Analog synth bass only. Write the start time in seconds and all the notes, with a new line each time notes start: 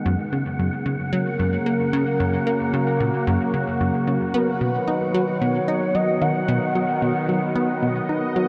0.06 F#2
0.32 C#3
0.59 F#2
0.86 C#3
1.13 F#3
1.39 F#2
1.66 A#3
1.93 C#3
2.20 F#2
2.47 A#3
2.74 C#3
3.00 A#2
3.27 F#2
3.54 C#3
3.81 F#2
4.07 C#3
4.34 B3
4.61 B2
4.88 D#4
5.14 F#3
5.41 B2
5.68 D#4
5.95 F#3
6.22 D#3
6.48 B2
6.75 F#3
7.02 B2
7.29 F#3
7.56 B3
7.82 B2
8.09 D#4
8.36 F#3